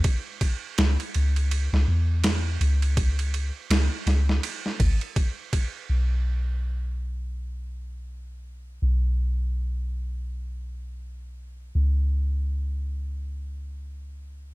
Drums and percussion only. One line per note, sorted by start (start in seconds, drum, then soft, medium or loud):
0.04 kick loud
0.04 ride medium
0.41 kick medium
0.41 ride medium
0.78 snare loud
0.78 ride medium
1.00 ride soft
1.14 ride medium
1.36 ride soft
1.51 ride medium
1.74 snare soft
2.24 snare loud
2.24 ride medium
2.61 ride medium
2.82 ride soft
2.97 kick loud
2.97 ride medium
3.19 ride soft
3.34 ride medium
3.71 snare loud
3.71 ride medium
4.07 snare soft
4.07 ride medium
4.29 snare medium
4.43 ride medium
4.66 snare soft
4.80 kick loud
4.80 ride medium
5.01 ride soft
5.16 kick loud
5.16 ride medium
5.53 kick medium
5.53 ride medium